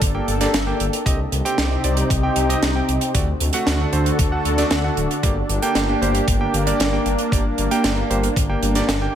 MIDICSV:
0, 0, Header, 1, 5, 480
1, 0, Start_track
1, 0, Key_signature, -2, "minor"
1, 0, Tempo, 521739
1, 975, Time_signature, 4, 2, 24, 8
1, 8418, End_track
2, 0, Start_track
2, 0, Title_t, "Electric grand piano"
2, 0, Program_c, 0, 2
2, 135, Note_on_c, 0, 58, 69
2, 135, Note_on_c, 0, 67, 66
2, 135, Note_on_c, 0, 79, 78
2, 346, Note_off_c, 0, 58, 0
2, 346, Note_off_c, 0, 67, 0
2, 346, Note_off_c, 0, 79, 0
2, 375, Note_on_c, 0, 58, 90
2, 375, Note_on_c, 0, 67, 86
2, 375, Note_on_c, 0, 74, 98
2, 536, Note_off_c, 0, 74, 0
2, 537, Note_off_c, 0, 58, 0
2, 537, Note_off_c, 0, 67, 0
2, 615, Note_on_c, 0, 58, 78
2, 615, Note_on_c, 0, 67, 71
2, 615, Note_on_c, 0, 79, 83
2, 776, Note_off_c, 0, 58, 0
2, 776, Note_off_c, 0, 79, 0
2, 777, Note_off_c, 0, 67, 0
2, 975, Note_on_c, 0, 60, 66
2, 975, Note_on_c, 0, 67, 66
2, 975, Note_on_c, 0, 75, 79
2, 1076, Note_off_c, 0, 60, 0
2, 1076, Note_off_c, 0, 67, 0
2, 1076, Note_off_c, 0, 75, 0
2, 1335, Note_on_c, 0, 60, 92
2, 1335, Note_on_c, 0, 67, 86
2, 1336, Note_on_c, 0, 79, 107
2, 1666, Note_off_c, 0, 60, 0
2, 1666, Note_off_c, 0, 67, 0
2, 1666, Note_off_c, 0, 79, 0
2, 1694, Note_on_c, 0, 67, 70
2, 1694, Note_on_c, 0, 74, 85
2, 1695, Note_on_c, 0, 60, 75
2, 1856, Note_off_c, 0, 60, 0
2, 1856, Note_off_c, 0, 67, 0
2, 1856, Note_off_c, 0, 74, 0
2, 2054, Note_on_c, 0, 60, 72
2, 2054, Note_on_c, 0, 79, 83
2, 2055, Note_on_c, 0, 67, 67
2, 2266, Note_off_c, 0, 60, 0
2, 2266, Note_off_c, 0, 67, 0
2, 2266, Note_off_c, 0, 79, 0
2, 2295, Note_on_c, 0, 75, 101
2, 2296, Note_on_c, 0, 60, 87
2, 2296, Note_on_c, 0, 67, 86
2, 2457, Note_off_c, 0, 60, 0
2, 2457, Note_off_c, 0, 67, 0
2, 2457, Note_off_c, 0, 75, 0
2, 2535, Note_on_c, 0, 60, 74
2, 2535, Note_on_c, 0, 67, 70
2, 2535, Note_on_c, 0, 79, 84
2, 2697, Note_off_c, 0, 60, 0
2, 2697, Note_off_c, 0, 67, 0
2, 2697, Note_off_c, 0, 79, 0
2, 2895, Note_on_c, 0, 57, 70
2, 2895, Note_on_c, 0, 74, 78
2, 2896, Note_on_c, 0, 66, 64
2, 2996, Note_off_c, 0, 57, 0
2, 2996, Note_off_c, 0, 66, 0
2, 2996, Note_off_c, 0, 74, 0
2, 3256, Note_on_c, 0, 57, 94
2, 3256, Note_on_c, 0, 66, 89
2, 3256, Note_on_c, 0, 78, 100
2, 3586, Note_off_c, 0, 66, 0
2, 3587, Note_off_c, 0, 57, 0
2, 3587, Note_off_c, 0, 78, 0
2, 3615, Note_on_c, 0, 57, 77
2, 3615, Note_on_c, 0, 66, 71
2, 3615, Note_on_c, 0, 72, 86
2, 3777, Note_off_c, 0, 57, 0
2, 3777, Note_off_c, 0, 66, 0
2, 3777, Note_off_c, 0, 72, 0
2, 3975, Note_on_c, 0, 57, 72
2, 3975, Note_on_c, 0, 66, 67
2, 3975, Note_on_c, 0, 78, 81
2, 4186, Note_off_c, 0, 57, 0
2, 4186, Note_off_c, 0, 66, 0
2, 4186, Note_off_c, 0, 78, 0
2, 4215, Note_on_c, 0, 57, 88
2, 4215, Note_on_c, 0, 66, 81
2, 4215, Note_on_c, 0, 74, 105
2, 4376, Note_off_c, 0, 66, 0
2, 4377, Note_off_c, 0, 57, 0
2, 4377, Note_off_c, 0, 74, 0
2, 4455, Note_on_c, 0, 57, 73
2, 4455, Note_on_c, 0, 66, 72
2, 4455, Note_on_c, 0, 78, 83
2, 4616, Note_off_c, 0, 57, 0
2, 4616, Note_off_c, 0, 66, 0
2, 4616, Note_off_c, 0, 78, 0
2, 4815, Note_on_c, 0, 58, 68
2, 4815, Note_on_c, 0, 67, 65
2, 4815, Note_on_c, 0, 74, 75
2, 4916, Note_off_c, 0, 58, 0
2, 4916, Note_off_c, 0, 67, 0
2, 4916, Note_off_c, 0, 74, 0
2, 5174, Note_on_c, 0, 58, 94
2, 5175, Note_on_c, 0, 67, 84
2, 5175, Note_on_c, 0, 79, 106
2, 5506, Note_off_c, 0, 58, 0
2, 5506, Note_off_c, 0, 67, 0
2, 5506, Note_off_c, 0, 79, 0
2, 5535, Note_on_c, 0, 58, 80
2, 5535, Note_on_c, 0, 67, 75
2, 5535, Note_on_c, 0, 72, 83
2, 5697, Note_off_c, 0, 58, 0
2, 5697, Note_off_c, 0, 67, 0
2, 5697, Note_off_c, 0, 72, 0
2, 5895, Note_on_c, 0, 58, 73
2, 5895, Note_on_c, 0, 67, 68
2, 5895, Note_on_c, 0, 79, 84
2, 6106, Note_off_c, 0, 58, 0
2, 6106, Note_off_c, 0, 67, 0
2, 6106, Note_off_c, 0, 79, 0
2, 6134, Note_on_c, 0, 58, 92
2, 6134, Note_on_c, 0, 67, 83
2, 6134, Note_on_c, 0, 74, 96
2, 6296, Note_off_c, 0, 58, 0
2, 6296, Note_off_c, 0, 67, 0
2, 6296, Note_off_c, 0, 74, 0
2, 6374, Note_on_c, 0, 58, 80
2, 6375, Note_on_c, 0, 67, 69
2, 6375, Note_on_c, 0, 79, 87
2, 6536, Note_off_c, 0, 58, 0
2, 6536, Note_off_c, 0, 67, 0
2, 6536, Note_off_c, 0, 79, 0
2, 6735, Note_on_c, 0, 58, 70
2, 6735, Note_on_c, 0, 67, 64
2, 6735, Note_on_c, 0, 74, 77
2, 6836, Note_off_c, 0, 58, 0
2, 6836, Note_off_c, 0, 67, 0
2, 6836, Note_off_c, 0, 74, 0
2, 7095, Note_on_c, 0, 58, 95
2, 7095, Note_on_c, 0, 79, 109
2, 7096, Note_on_c, 0, 67, 87
2, 7426, Note_off_c, 0, 58, 0
2, 7426, Note_off_c, 0, 67, 0
2, 7426, Note_off_c, 0, 79, 0
2, 7455, Note_on_c, 0, 58, 75
2, 7455, Note_on_c, 0, 67, 73
2, 7455, Note_on_c, 0, 72, 87
2, 7617, Note_off_c, 0, 58, 0
2, 7617, Note_off_c, 0, 67, 0
2, 7617, Note_off_c, 0, 72, 0
2, 7815, Note_on_c, 0, 58, 75
2, 7815, Note_on_c, 0, 67, 66
2, 7815, Note_on_c, 0, 79, 81
2, 8026, Note_off_c, 0, 58, 0
2, 8026, Note_off_c, 0, 67, 0
2, 8026, Note_off_c, 0, 79, 0
2, 8054, Note_on_c, 0, 58, 89
2, 8054, Note_on_c, 0, 67, 85
2, 8054, Note_on_c, 0, 74, 100
2, 8216, Note_off_c, 0, 58, 0
2, 8216, Note_off_c, 0, 67, 0
2, 8216, Note_off_c, 0, 74, 0
2, 8295, Note_on_c, 0, 58, 76
2, 8295, Note_on_c, 0, 67, 74
2, 8295, Note_on_c, 0, 79, 86
2, 8418, Note_off_c, 0, 58, 0
2, 8418, Note_off_c, 0, 67, 0
2, 8418, Note_off_c, 0, 79, 0
2, 8418, End_track
3, 0, Start_track
3, 0, Title_t, "Analog synth pad"
3, 0, Program_c, 1, 89
3, 0, Note_on_c, 1, 58, 77
3, 0, Note_on_c, 1, 62, 71
3, 0, Note_on_c, 1, 69, 88
3, 938, Note_off_c, 1, 58, 0
3, 938, Note_off_c, 1, 62, 0
3, 955, Note_off_c, 1, 69, 0
3, 972, Note_on_c, 1, 63, 75
3, 973, Note_on_c, 1, 48, 78
3, 973, Note_on_c, 1, 67, 92
3, 974, Note_on_c, 1, 60, 72
3, 2874, Note_off_c, 1, 63, 0
3, 2875, Note_off_c, 1, 48, 0
3, 2875, Note_off_c, 1, 60, 0
3, 2875, Note_off_c, 1, 67, 0
3, 2894, Note_on_c, 1, 50, 77
3, 2894, Note_on_c, 1, 62, 73
3, 2894, Note_on_c, 1, 66, 71
3, 2895, Note_on_c, 1, 69, 90
3, 4795, Note_off_c, 1, 50, 0
3, 4795, Note_off_c, 1, 66, 0
3, 4796, Note_off_c, 1, 69, 0
3, 4815, Note_on_c, 1, 58, 78
3, 4815, Note_on_c, 1, 67, 89
3, 6716, Note_off_c, 1, 67, 0
3, 8418, Note_off_c, 1, 58, 0
3, 8418, Note_off_c, 1, 62, 0
3, 8418, End_track
4, 0, Start_track
4, 0, Title_t, "Detuned saw bass"
4, 0, Program_c, 2, 39
4, 14, Note_on_c, 2, 31, 85
4, 185, Note_off_c, 2, 31, 0
4, 256, Note_on_c, 2, 31, 87
4, 426, Note_off_c, 2, 31, 0
4, 496, Note_on_c, 2, 31, 103
4, 666, Note_off_c, 2, 31, 0
4, 735, Note_on_c, 2, 31, 82
4, 820, Note_off_c, 2, 31, 0
4, 975, Note_on_c, 2, 36, 97
4, 1145, Note_off_c, 2, 36, 0
4, 1214, Note_on_c, 2, 36, 91
4, 1300, Note_off_c, 2, 36, 0
4, 1455, Note_on_c, 2, 36, 99
4, 1626, Note_off_c, 2, 36, 0
4, 1696, Note_on_c, 2, 36, 99
4, 1866, Note_off_c, 2, 36, 0
4, 1935, Note_on_c, 2, 36, 89
4, 2106, Note_off_c, 2, 36, 0
4, 2175, Note_on_c, 2, 36, 87
4, 2345, Note_off_c, 2, 36, 0
4, 2414, Note_on_c, 2, 36, 102
4, 2585, Note_off_c, 2, 36, 0
4, 2655, Note_on_c, 2, 36, 79
4, 2740, Note_off_c, 2, 36, 0
4, 2894, Note_on_c, 2, 38, 98
4, 3065, Note_off_c, 2, 38, 0
4, 3134, Note_on_c, 2, 38, 93
4, 3220, Note_off_c, 2, 38, 0
4, 3374, Note_on_c, 2, 38, 93
4, 3545, Note_off_c, 2, 38, 0
4, 3614, Note_on_c, 2, 38, 100
4, 3785, Note_off_c, 2, 38, 0
4, 3854, Note_on_c, 2, 38, 87
4, 4025, Note_off_c, 2, 38, 0
4, 4094, Note_on_c, 2, 38, 90
4, 4265, Note_off_c, 2, 38, 0
4, 4333, Note_on_c, 2, 38, 83
4, 4505, Note_off_c, 2, 38, 0
4, 4574, Note_on_c, 2, 26, 88
4, 4660, Note_off_c, 2, 26, 0
4, 4814, Note_on_c, 2, 31, 96
4, 4985, Note_off_c, 2, 31, 0
4, 5054, Note_on_c, 2, 31, 93
4, 5140, Note_off_c, 2, 31, 0
4, 5294, Note_on_c, 2, 31, 101
4, 5465, Note_off_c, 2, 31, 0
4, 5534, Note_on_c, 2, 31, 101
4, 5705, Note_off_c, 2, 31, 0
4, 5775, Note_on_c, 2, 31, 86
4, 5946, Note_off_c, 2, 31, 0
4, 6013, Note_on_c, 2, 31, 86
4, 6185, Note_off_c, 2, 31, 0
4, 6253, Note_on_c, 2, 31, 96
4, 6425, Note_off_c, 2, 31, 0
4, 6493, Note_on_c, 2, 31, 84
4, 6579, Note_off_c, 2, 31, 0
4, 6734, Note_on_c, 2, 31, 100
4, 6905, Note_off_c, 2, 31, 0
4, 6974, Note_on_c, 2, 31, 90
4, 7060, Note_off_c, 2, 31, 0
4, 7215, Note_on_c, 2, 31, 97
4, 7385, Note_off_c, 2, 31, 0
4, 7455, Note_on_c, 2, 31, 104
4, 7626, Note_off_c, 2, 31, 0
4, 7695, Note_on_c, 2, 31, 86
4, 7866, Note_off_c, 2, 31, 0
4, 7935, Note_on_c, 2, 31, 84
4, 8105, Note_off_c, 2, 31, 0
4, 8175, Note_on_c, 2, 31, 104
4, 8346, Note_off_c, 2, 31, 0
4, 8418, End_track
5, 0, Start_track
5, 0, Title_t, "Drums"
5, 14, Note_on_c, 9, 36, 115
5, 14, Note_on_c, 9, 42, 104
5, 106, Note_off_c, 9, 36, 0
5, 106, Note_off_c, 9, 42, 0
5, 257, Note_on_c, 9, 42, 70
5, 349, Note_off_c, 9, 42, 0
5, 375, Note_on_c, 9, 42, 84
5, 380, Note_on_c, 9, 38, 34
5, 467, Note_off_c, 9, 42, 0
5, 472, Note_off_c, 9, 38, 0
5, 495, Note_on_c, 9, 42, 109
5, 500, Note_on_c, 9, 38, 113
5, 587, Note_off_c, 9, 42, 0
5, 592, Note_off_c, 9, 38, 0
5, 737, Note_on_c, 9, 42, 81
5, 829, Note_off_c, 9, 42, 0
5, 858, Note_on_c, 9, 42, 81
5, 950, Note_off_c, 9, 42, 0
5, 974, Note_on_c, 9, 36, 116
5, 980, Note_on_c, 9, 42, 95
5, 1066, Note_off_c, 9, 36, 0
5, 1072, Note_off_c, 9, 42, 0
5, 1217, Note_on_c, 9, 42, 71
5, 1309, Note_off_c, 9, 42, 0
5, 1340, Note_on_c, 9, 42, 79
5, 1432, Note_off_c, 9, 42, 0
5, 1454, Note_on_c, 9, 38, 113
5, 1457, Note_on_c, 9, 42, 89
5, 1546, Note_off_c, 9, 38, 0
5, 1549, Note_off_c, 9, 42, 0
5, 1692, Note_on_c, 9, 42, 83
5, 1784, Note_off_c, 9, 42, 0
5, 1811, Note_on_c, 9, 42, 75
5, 1903, Note_off_c, 9, 42, 0
5, 1934, Note_on_c, 9, 36, 119
5, 1937, Note_on_c, 9, 42, 89
5, 2026, Note_off_c, 9, 36, 0
5, 2029, Note_off_c, 9, 42, 0
5, 2170, Note_on_c, 9, 42, 83
5, 2262, Note_off_c, 9, 42, 0
5, 2300, Note_on_c, 9, 42, 84
5, 2392, Note_off_c, 9, 42, 0
5, 2415, Note_on_c, 9, 42, 92
5, 2416, Note_on_c, 9, 38, 114
5, 2507, Note_off_c, 9, 42, 0
5, 2508, Note_off_c, 9, 38, 0
5, 2656, Note_on_c, 9, 42, 76
5, 2748, Note_off_c, 9, 42, 0
5, 2771, Note_on_c, 9, 42, 79
5, 2863, Note_off_c, 9, 42, 0
5, 2894, Note_on_c, 9, 36, 117
5, 2894, Note_on_c, 9, 42, 100
5, 2986, Note_off_c, 9, 36, 0
5, 2986, Note_off_c, 9, 42, 0
5, 3132, Note_on_c, 9, 42, 67
5, 3224, Note_off_c, 9, 42, 0
5, 3245, Note_on_c, 9, 42, 80
5, 3337, Note_off_c, 9, 42, 0
5, 3374, Note_on_c, 9, 38, 122
5, 3378, Note_on_c, 9, 42, 87
5, 3466, Note_off_c, 9, 38, 0
5, 3470, Note_off_c, 9, 42, 0
5, 3612, Note_on_c, 9, 42, 71
5, 3704, Note_off_c, 9, 42, 0
5, 3736, Note_on_c, 9, 42, 70
5, 3828, Note_off_c, 9, 42, 0
5, 3854, Note_on_c, 9, 36, 121
5, 3854, Note_on_c, 9, 42, 98
5, 3946, Note_off_c, 9, 36, 0
5, 3946, Note_off_c, 9, 42, 0
5, 4097, Note_on_c, 9, 42, 77
5, 4189, Note_off_c, 9, 42, 0
5, 4210, Note_on_c, 9, 38, 33
5, 4214, Note_on_c, 9, 42, 79
5, 4302, Note_off_c, 9, 38, 0
5, 4306, Note_off_c, 9, 42, 0
5, 4329, Note_on_c, 9, 42, 86
5, 4332, Note_on_c, 9, 38, 127
5, 4421, Note_off_c, 9, 42, 0
5, 4424, Note_off_c, 9, 38, 0
5, 4574, Note_on_c, 9, 42, 68
5, 4666, Note_off_c, 9, 42, 0
5, 4700, Note_on_c, 9, 42, 76
5, 4792, Note_off_c, 9, 42, 0
5, 4814, Note_on_c, 9, 36, 116
5, 4815, Note_on_c, 9, 42, 88
5, 4906, Note_off_c, 9, 36, 0
5, 4907, Note_off_c, 9, 42, 0
5, 5055, Note_on_c, 9, 42, 68
5, 5147, Note_off_c, 9, 42, 0
5, 5174, Note_on_c, 9, 42, 68
5, 5266, Note_off_c, 9, 42, 0
5, 5292, Note_on_c, 9, 38, 107
5, 5293, Note_on_c, 9, 42, 93
5, 5384, Note_off_c, 9, 38, 0
5, 5385, Note_off_c, 9, 42, 0
5, 5542, Note_on_c, 9, 42, 77
5, 5634, Note_off_c, 9, 42, 0
5, 5654, Note_on_c, 9, 42, 72
5, 5746, Note_off_c, 9, 42, 0
5, 5775, Note_on_c, 9, 36, 117
5, 5775, Note_on_c, 9, 42, 93
5, 5867, Note_off_c, 9, 36, 0
5, 5867, Note_off_c, 9, 42, 0
5, 6017, Note_on_c, 9, 42, 69
5, 6109, Note_off_c, 9, 42, 0
5, 6135, Note_on_c, 9, 42, 76
5, 6227, Note_off_c, 9, 42, 0
5, 6256, Note_on_c, 9, 42, 91
5, 6264, Note_on_c, 9, 38, 111
5, 6348, Note_off_c, 9, 42, 0
5, 6356, Note_off_c, 9, 38, 0
5, 6493, Note_on_c, 9, 42, 72
5, 6585, Note_off_c, 9, 42, 0
5, 6610, Note_on_c, 9, 42, 78
5, 6702, Note_off_c, 9, 42, 0
5, 6735, Note_on_c, 9, 36, 112
5, 6744, Note_on_c, 9, 42, 90
5, 6827, Note_off_c, 9, 36, 0
5, 6836, Note_off_c, 9, 42, 0
5, 6973, Note_on_c, 9, 42, 64
5, 7065, Note_off_c, 9, 42, 0
5, 7096, Note_on_c, 9, 42, 71
5, 7188, Note_off_c, 9, 42, 0
5, 7214, Note_on_c, 9, 42, 95
5, 7215, Note_on_c, 9, 38, 108
5, 7306, Note_off_c, 9, 42, 0
5, 7307, Note_off_c, 9, 38, 0
5, 7458, Note_on_c, 9, 42, 66
5, 7550, Note_off_c, 9, 42, 0
5, 7576, Note_on_c, 9, 42, 63
5, 7668, Note_off_c, 9, 42, 0
5, 7695, Note_on_c, 9, 36, 112
5, 7698, Note_on_c, 9, 42, 89
5, 7787, Note_off_c, 9, 36, 0
5, 7790, Note_off_c, 9, 42, 0
5, 7935, Note_on_c, 9, 42, 74
5, 8027, Note_off_c, 9, 42, 0
5, 8052, Note_on_c, 9, 42, 73
5, 8055, Note_on_c, 9, 38, 36
5, 8144, Note_off_c, 9, 42, 0
5, 8147, Note_off_c, 9, 38, 0
5, 8176, Note_on_c, 9, 38, 114
5, 8177, Note_on_c, 9, 42, 88
5, 8268, Note_off_c, 9, 38, 0
5, 8269, Note_off_c, 9, 42, 0
5, 8418, End_track
0, 0, End_of_file